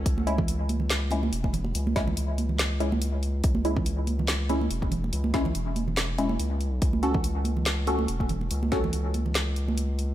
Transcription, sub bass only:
X:1
M:4/4
L:1/8
Q:"Swing 16ths" 1/4=142
K:C#m
V:1 name="Sub bass" clef=bass
C,,6 E,,,2 | C,,2 C,,6 | C,,6 E,,,2 | C,,2 E,,,4 C,,2 |
C,,6 E,,,2 | C,,2 C,,6 |]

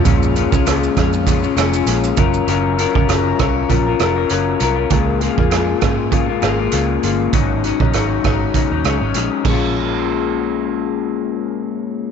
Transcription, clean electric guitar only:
X:1
M:4/4
L:1/16
Q:"Swing 16ths" 1/4=99
K:Bbm
V:1 name="Clean electric guitar"
[B,,A,DF]2 [B,,A,DF] [A,DF] [B,,A,DF]2 [B,,A,DF]2 [B,,A,DF] [A,DF] [B,,A,DF] [A,DF] [B,,A,DF]2 [G,DFB]2 | [G,DFB]2 [G,DFB] [DFB] [G,DFB]2 [G,DFB]2 [G,DFB] [DFB] [G,DFB] [DFB] [G,DFB]2 [G,DFB] [DFB] | [D,A,B,F]2 [D,A,B,F] [A,B,F] [D,A,B,F]2 [D,A,B,F]2 [D,A,B,F] [A,B,F] [D,A,B,F] [A,B,F] [D,A,B,F]2 [D,A,B,F]2 | [A,,G,DE]2 [A,,G,DE] [G,DE] [A,,G,DE]2 [A,,G,DE]2 [A,,G,DE] [G,DE] [A,,G,DE] [G,DE] [A,,G,DE]2 [B,,A,DF]2- |
[B,,A,DF]16 |]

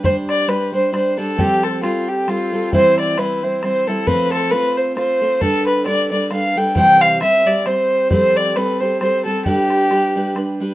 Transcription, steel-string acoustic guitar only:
X:1
M:3/4
L:1/8
Q:"Swing" 1/4=134
K:Gmix
V:1 name="Steel-string acoustic guitar"
[G,DGc]2 [G,DGc] [G,DGc] [G,DGc] [G,DGc] | [F,G,CGA]2 [G,CGA]2 [G,CGA] [G,CGA] | [E,G,CEc]2 [G,CEc] [G,CEc] [G,CEc] [G,CEc] | [F,A,CFc]2 [A,CFc]2 [A,CFc] [A,CFc] |
[G,DAB]2 [G,DAB] [G,DAB] [G,DAB] [G,DAB] | [C,E,G,CGc]2 [G,CGc] [G,CGc] [G,CGc]2 | [F,G,CGA]2 [G,CGA] [G,CGA] [G,CGA] [G,CGA] | [G,DGB]2 [G,DGB] [G,DGB] [G,DGB] [G,DGB] |]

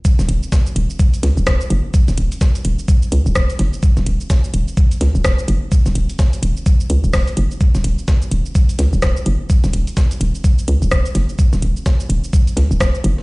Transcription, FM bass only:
X:1
M:4/4
L:1/16
Q:"Swing 16ths" 1/4=127
K:Ebm
V:1 name="FM bass" clef=bass
z E,,, E,,, z3 E,,, z3 D,, E,,, E,,, z G,,, z | z E,,, E,,, z3 E,,, z3 D,, E,,, E,,, z G,,, z | z E,,, E,,, z3 E,,, z3 D,, E,,, E,,, z G,,, z | z E,,, E,,, z3 E,,, z3 D,, E,,, E,,, z G,,, z |
z E,,, E,,, z3 E,,, z3 D,, E,,, E,,, z G,,, z | z E,,, E,,, z3 E,,, z3 D,, E,,, E,,, z G,,, z | z E,,, E,,, z3 E,,, z3 D,, E,,, E,,, z G,,, z |]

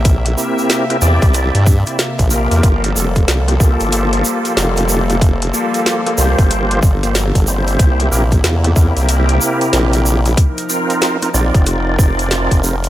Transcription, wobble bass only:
X:1
M:4/4
L:1/16
Q:"Swing 16ths" 1/4=93
K:Gdor
V:1 name="Wobble bass" clef=bass
B,,,2 z4 E,, C,,2 G,,2 z2 B,,,2 E,, | G,,,2 F,,,2 C,,2 C,, G,,,3 z2 F,,,4- | F,,,2 z4 C,, G,,,3 G,,,3 G,,,3 | C,,2 B,,,2 E,,2 E,, C,,3 z2 B,,,4 |
z6 B,,, F,,,3 F,,,3 F,,,3 |]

